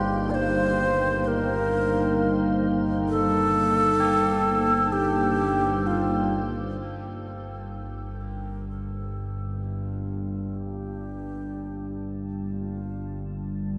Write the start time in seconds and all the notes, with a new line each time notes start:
Already playing: G1 G2 G3 A#3 D#4 F4 G4 C5 F5 G5
0.30 D5
0.34 C5
1.24 A#4 C5
3.09 A4
4.00 G4
4.92 G4
5.87 F4
6.80 G1 G2 G3 A4
7.92 A5
8.21 D4 A#4
8.54 A#3
8.69 A4
9.64 E4
9.82 F4
10.55 G4
12.42 E4
12.54 F4